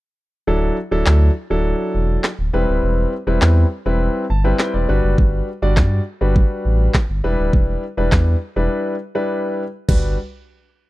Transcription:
0.47 D1 F#3 D4 E4 A4
0.91 D1 F#3 D4 E4 A4
1.06 D2, snare, clap
1.50 D1 F#3 D4 E4 A4
1.94 E1
2.24 snare, clap
2.39 D1
2.53 E1 G3 C4 E4 B4
2.68 D1
2.83 E1
3.27 E1 G3 C4 E4 B4
3.42 E2, snare, clap
3.86 E1 G3 C4 E4 B4
4.30 G1 A5
4.44 G3 C4 E4 B4
4.59 G5, snare, clap
4.74 E1 D5
4.89 G1 G3 D4 F#4 B4
5.03 F#1
5.18 G1, kick
5.62 G1 G3 D4 F#4 D5
5.77 G2, kick, snare, clap
6.21 G1 G3 D4 F#4 B4
6.36 kick
6.65 A1
6.94 kick, snare, clap
7.09 G1
7.24 E1 G3 D4 E4 B4
7.39 D1
7.53 E1, kick
7.97 E1 G3 D4 E4 B4
8.12 E2, kick, snare, clap
8.56 E1 G3 D4 E4 B4
9.15 G3 D4 E4 B4
9.88 G1 G3 D4 F#4 B4, kick, floor tom, crash

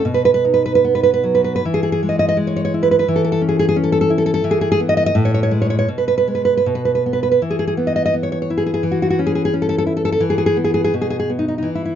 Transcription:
0.05 B2
0.14 B4
0.25 B4
0.34 B4
0.45 D#4
0.54 B4
0.66 B4
0.75 B4
0.85 B3
0.95 B4
1.03 B4
1.14 B4
1.24 F#3
1.35 B4
1.44 B4
1.56 B4
1.65 E3
1.74 G#4
1.83 G#4
1.92 G#4
2.03 G#3
2.09 D#5
2.19 D#5
2.29 D#5
2.37 G#3
2.47 C#5
2.56 C#5
2.65 C#5
2.74 E4
2.83 B4
2.91 B4
2.99 B4
3.08 E3
3.16 A4
3.24 A4
3.32 A4
3.42 C#4
3.49 G#4
3.59 G#4
3.69 G#4
3.76 C#4
3.84 A4
3.92 A4
4.01 A4
4.10 E4
4.18 A4
4.26 A4
4.34 A4
4.44 E3
4.51 G#4
4.61 G#4
4.72 G#4
4.80 B3
4.89 D#5
4.97 D#5
5.06 D#5
5.15 A2
5.25 C#5
5.34 C#5
5.43 C#5
5.51 G#3
5.62 C#5
5.70 C#5
5.79 C#5
5.88 B2
5.98 B4
6.08 B4
6.18 B4
6.28 G#3
6.35 B4
6.45 B4
6.57 B4
6.66 B2
6.75 B4
6.85 B4
6.95 B4
7.06 B3
7.13 B4
7.23 B4
7.32 B4
7.42 E3
7.50 G#4
7.59 G#4
7.67 G#4
7.77 B3
7.87 D#5
7.96 D#5
8.06 D#5
8.14 B3
8.23 C#5
8.32 C#5
8.42 C#5
8.50 E4
8.58 G#4
8.66 G#4
8.74 G#4
8.83 E3
8.91 F#4
9.02 F#4
9.10 F#4
9.19 C#4
9.27 G#4
9.35 G#4
9.45 G#4
9.54 C#4
9.62 A4
9.69 A4
9.78 A4
9.87 E4
9.97 A4
10.05 A4
10.12 A4
10.20 E3
10.30 G#4
10.38 G#4
10.46 G#4
10.57 B3
10.64 G#4
10.74 G#4
10.84 G#4
10.94 B2
11.01 G#4
11.10 G#4
11.20 G#4
11.30 B3
11.39 D#4
11.48 D#4
11.58 D#4
11.63 E3
11.75 E4
11.85 E4

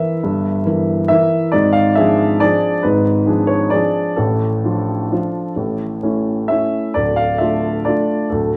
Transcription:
Already playing: E3 E4 A#4 E5
0.23 G1 G2
0.65 E3 E4 A#4
1.08 E3 E4 A#4 E5
1.52 G#1 G#2 D5
1.73 F5
1.95 F3 D4 G#4 E5
2.40 F3 D4 G#4 D5
2.82 G#1 G#2 B4
3.26 F3 D4 G#4
3.47 C#5
3.70 F3 D4 G#4 D5
4.16 A1 A2 A4
4.64 F3 D4 F4
5.11 F3 D4 F4
5.56 A1 A2
6.03 A3 C#4 E4
6.48 A3 C#4 E4 E5
6.94 D1 D2 D5
7.16 F5
7.38 A3 D4 F4 E5
7.85 A3 D4 F4 D5
8.30 D1 D2 A4

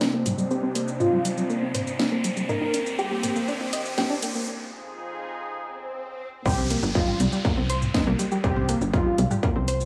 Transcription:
Already playing: C3 C4 D4 D#4, riser
0.01 D#4, snare, shaker
0.13 A#3
0.26 G3, open hi-hat, mid tom, shaker
0.38 G3, shaker
0.51 C4 G4, shaker
0.63 C4
0.75 A#3, open hi-hat, shaker
0.88 shaker
1.00 D#4 F4, mid tom, shaker
1.12 G3
1.25 G3, open hi-hat, shaker
1.37 G3, shaker
1.50 A#3, shaker
1.62 C4
1.74 C5, open hi-hat, mid tom, shaker
1.87 shaker
1.99 D#4, snare, shaker
2.12 A#3
2.24 G3, open hi-hat, shaker
2.37 G3, shaker
2.49 D#2 D#3 C4 D#4 G4 A#4, mid tom, shaker
2.61 D#4
2.74 D4, open hi-hat, shaker
2.86 shaker
2.99 G4, shaker
3.11 A#3
3.23 A#3, open hi-hat, mid tom, shaker
3.36 A#3, shaker
3.48 D4, shaker
3.61 D#4
3.73 D#5, open hi-hat, shaker
3.85 shaker
3.98 G4, snare, mid tom, shaker
4.10 D4
4.22 A#3, open hi-hat, shaker
4.35 A#3, shaker
4.47 F2 F3 D#4 G#4
5.46 swell
6.46 C2 C4 G4 C5, kick, downlifter, shaker
6.58 C4 C5
6.70 A#3 A#4, open hi-hat, shaker
6.83 G1, cross-stick, shaker
6.95 D#4 F4 D#5, kick, shaker
7.08 G3 G4, mid tom
7.20 C2 G3 G4, open hi-hat, shaker
7.32 G3 G4, shaker
7.45 A#3 A#4, kick, cross-stick, shaker
7.57 C2 C4 C5
7.70 C5 C6, open hi-hat, shaker
7.82 mid tom, shaker
7.94 D#4 D#5, kick, snare, shaker
8.07 C2 A#3 A#4, cross-stick
8.19 G3 G4, open hi-hat, shaker
8.32 G3 G4, shaker
8.44 C2 C4 G4 C5, kick, shaker
8.56 C4 C5, mid tom
8.69 A#3 A#4, cross-stick, open hi-hat, shaker
8.81 G1, shaker
8.93 D#4 F4 D#5, kick, shaker
9.06 G3 G4
9.18 C2 G3 G4, open hi-hat, shaker
9.31 G3 G4, cross-stick, mid tom, shaker
9.43 A#3 A#4, kick, shaker
9.56 C2 C4 C5
9.68 C5 C6, open hi-hat, shaker
9.80 shaker

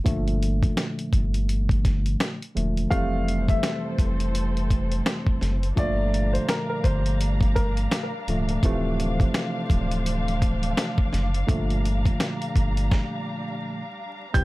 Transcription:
0.04 G1 A#2 D3 F3 A3, kick, closed hi-hat
0.28 closed hi-hat
0.43 closed hi-hat
0.63 kick, closed hi-hat
0.77 snare, closed hi-hat
0.99 closed hi-hat
1.13 G1, kick, closed hi-hat
1.34 closed hi-hat
1.49 closed hi-hat
1.69 kick, closed hi-hat
1.85 kick, snare, closed hi-hat
2.06 closed hi-hat
2.20 snare, closed hi-hat
2.42 closed hi-hat
2.55 E1 A#2 D3 F3 A3, closed hi-hat
2.77 closed hi-hat
2.90 F1 F2 C3 E3 G3 A3 C4 A4 C5 F5, kick, closed hi-hat
3.28 closed hi-hat
3.48 E5, kick, closed hi-hat
3.63 snare, closed hi-hat
3.98 F1, kick, closed hi-hat
4.20 closed hi-hat
4.35 closed hi-hat
4.57 closed hi-hat
4.71 kick, closed hi-hat
4.92 closed hi-hat
5.06 snare, closed hi-hat
5.26 kick
5.41 F#1, snare, closed hi-hat
5.63 closed hi-hat
5.76 G1 A#2 D3 F3 G3 A3 D4 D5 F5 A#5, kick, closed hi-hat
6.14 closed hi-hat
6.33 C5, closed hi-hat
6.49 A#4, snare, closed hi-hat
6.69 A#4
6.84 G1 C5, kick, closed hi-hat
7.06 closed hi-hat
7.21 closed hi-hat
7.41 kick, closed hi-hat
7.55 A#4, kick, closed hi-hat
7.77 closed hi-hat
7.91 snare, closed hi-hat
8.28 C#1 A#2 D3 F3 A3, closed hi-hat
8.49 closed hi-hat
8.63 D1 C3 D3 E3 F3 A3 C5, kick, closed hi-hat
9.00 closed hi-hat
9.20 kick, closed hi-hat
9.34 snare, closed hi-hat
9.70 D1, kick, closed hi-hat
9.91 closed hi-hat
10.06 closed hi-hat
10.28 closed hi-hat
10.42 kick, closed hi-hat
10.63 closed hi-hat
10.77 snare, closed hi-hat
10.98 kick
11.13 F#1, snare, closed hi-hat
11.34 closed hi-hat
11.47 G1 A#2 D3 F3 G3 A3 A#5, kick, closed hi-hat
11.70 closed hi-hat
11.86 closed hi-hat
12.06 kick, closed hi-hat
12.20 snare, closed hi-hat
12.42 closed hi-hat
12.56 G1, kick, closed hi-hat
12.77 closed hi-hat
12.91 kick, snare
14.34 C2 C3 E3 G3 C4 G4 E5 G6, kick, closed hi-hat

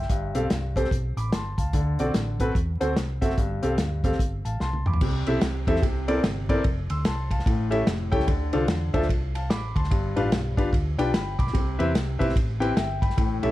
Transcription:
Already playing: E5 G5
0.02 snare
0.09 G1 G2, kick, closed hi-hat
0.35 B1 C4 G4 A4 F5, closed hi-hat
0.50 C2, snare, closed hi-hat
0.76 C4 G4 A4 C5, kick, closed hi-hat
0.84 snare
0.91 B1, kick, closed hi-hat
1.16 A1 B5 D6, closed hi-hat
1.32 G1 A5 C6, snare, closed hi-hat
1.58 C#2 F5 A5, kick, closed hi-hat
1.73 D2 D3, kick, closed hi-hat
1.99 B1 C4 F#4 A4 D5, closed hi-hat
2.14 A1, snare, closed hi-hat
2.40 C4 F#4 A4 B4, kick, closed hi-hat
2.55 E2, kick, closed hi-hat
2.80 D2 C4 F#4 A4 C5, closed hi-hat
2.96 C2, snare, closed hi-hat
3.21 F#1 C4 F#4 A4 E5, kick, closed hi-hat
3.30 snare
3.37 G1 G2, kick, closed hi-hat
3.62 C2 C4 G4 A4 F5, closed hi-hat
3.78 D2, snare, closed hi-hat
4.04 C4 G4 A4 F5, kick, closed hi-hat
4.12 snare
4.19 G1, kick, closed hi-hat
4.45 A1 F5 A5, closed hi-hat
4.60 C2 A5 C6, snare
4.73 high tom
4.86 E2 B5 D6, mid tom
4.93 floor tom
5.01 C2 C3, kick, crash
5.27 B1 C4 E4 G4 A4 E5, ride
5.41 C2, snare, ride
5.67 E2 C4 E4 G4 A4 E5, kick, ride
5.76 snare
5.82 C2 C3, kick, ride
6.08 C4 E4 A4 A#4 D5, ride
6.24 G1, snare, ride
6.49 C4 E4 A4 A#4 D5, kick, ride
6.64 F1, kick, ride
6.90 D2 C6 E6, ride
7.05 A5 C6, snare, ride
7.31 F5 A5, kick, ride
7.39 snare
7.46 A1 A2, kick, ride
7.70 C#4 E4 G4 A4 E5, ride
7.87 F1, snare, ride
8.11 C#2 C#4 E4 G4 A4 G5, kick, ride
8.20 snare
8.27 D2 D3, kick, ride
8.53 C2 D4 F4 A4 C5 F5, ride
8.68 E2, snare, ride
8.94 D2 D4 F4 A4 C5 E5, kick, ride
9.02 snare
9.09 C2, kick, ride
9.35 F5 A5, ride
9.50 A1 B5 D6, snare, ride
9.75 D2 A5 C6, kick, ride
9.84 snare
9.91 G1 G2, kick, ride
10.16 A1 D4 F4 G4 B4 F5, ride
10.32 B1, snare, ride
10.57 G1 D4 F4 G4 B4 F5, kick, ride
10.72 D2, kick, ride
10.98 B1 D4 F4 G4 B4 G5, ride
11.14 B5, snare, ride
11.39 B1 B5 D6, kick, ride
11.47 snare
11.53 C2 C3, kick, ride
11.79 E2 C4 E4 G4 B4 E5, ride
11.95 C2, snare, ride
12.19 B1 C4 E4 G4 B4 E5, kick, ride
12.29 snare
12.36 A1, kick, ride
12.60 C4 E4 G4 B4 G5, ride
12.77 G1 E5, snare, ride
13.02 G5 B5, kick, ride
13.10 snare
13.17 A1 A2, kick, ride
13.43 B1 C#4 E4 G4 A4 E5, ride

